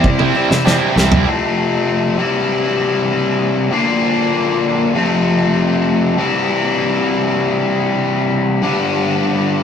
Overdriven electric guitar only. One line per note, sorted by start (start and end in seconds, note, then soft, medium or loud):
0.00 0.33 G3 medium
0.00 0.34 C4 medium
0.00 0.34 E4 medium
0.34 0.64 E3 medium
0.34 0.50 G3 medium
0.34 0.49 C4 medium
0.34 0.48 E4 medium
0.49 0.65 G3 medium
0.49 0.65 C4 medium
0.49 0.65 E4 medium
0.64 1.11 C3 medium
0.64 0.94 E3 loud
0.64 0.81 G3 medium
0.64 0.79 C4 medium
0.64 0.78 E4 loud
0.80 0.95 G3 medium
0.80 0.96 C4 medium
0.80 0.96 E4 medium
0.95 1.25 E3 medium
0.95 1.12 G3 medium
0.95 1.11 C4 medium
0.95 1.09 E4 medium
1.10 1.26 G3 medium
1.10 1.26 C4 medium
1.10 1.25 E4 medium
1.25 2.17 F2 medium
1.25 2.16 C3 loud
1.25 2.17 F3 loud
1.25 2.18 A3 loud
1.25 2.18 C4 loud
1.25 2.18 F4 loud
2.17 3.70 C3 loud
2.17 3.70 E3 loud
2.17 3.71 G3 medium
2.17 3.71 C4 medium
2.17 3.71 E4 loud
3.71 4.93 A#2 loud
3.71 4.93 D3 medium
3.71 4.93 A#3 loud
3.71 4.94 D4 loud
3.71 4.94 F4 loud
4.95 6.16 F2 medium
4.95 6.16 C3 medium
4.95 6.16 F3 medium
4.95 6.17 A3 loud
4.95 6.17 C4 medium
4.95 6.17 F4 loud
6.17 8.61 C3 loud
6.17 8.62 E3 loud
6.17 8.62 G3 loud
6.17 8.62 C4 loud
6.17 8.62 E4 loud
8.62 9.63 G2 loud
8.62 9.63 D3 loud
8.62 9.63 G3 loud
8.62 9.63 B3 medium
8.62 9.63 D4 loud
8.62 9.63 G4 loud